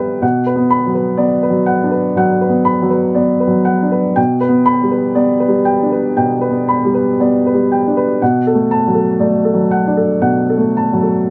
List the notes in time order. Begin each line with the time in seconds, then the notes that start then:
Already playing: G3 B3 B4 E5 G5 B5
0.22 B2 F#5
0.46 B4
0.56 B3
0.70 B5
0.86 F#3
0.95 B4
1.17 B3 D5
1.43 B4
1.50 F#3
1.66 F#5
1.84 D4
1.91 B4
2.16 F#3 F#5
2.41 B4
2.49 B3
2.65 B5
2.82 F#3
2.90 B4
3.15 B3 D5
3.40 B4
3.47 F#3
3.65 F#5
3.83 D4
3.92 B4
4.16 B2 G5
4.41 B4
4.49 B3
4.66 B5
4.83 G3
4.91 B4
5.15 B3 D5
5.40 B4
5.48 G3
5.65 G5
5.83 D4
5.92 B4
6.17 B2 G5
6.41 B4
6.50 B3
6.69 B5
6.85 G3
6.94 B4
7.20 B3 D5
7.46 B4
7.54 G3
7.72 G5
7.87 D4
7.97 B4
8.22 B2 F#5
8.47 A4
8.55 A3
8.71 A5
8.88 F#3
8.94 A4
9.20 A3 D5
9.45 A4
9.54 F#3
9.71 F#5
9.87 D4
9.97 A4
10.21 B2 F#5
10.50 A4
10.58 A3
10.77 A5
10.93 F#3
11.03 A4